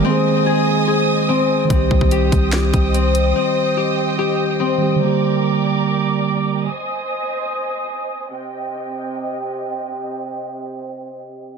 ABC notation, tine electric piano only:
X:1
M:4/4
L:1/8
Q:1/4=145
K:Cm
V:1 name="Tine electric piano"
[E,A,CA]8 | [E,G,CG]8- | [E,G,CG]6- [E,G,CG] [E,G,CG] | [D,G,B,G]8 |
z8 | z8 | z8 |]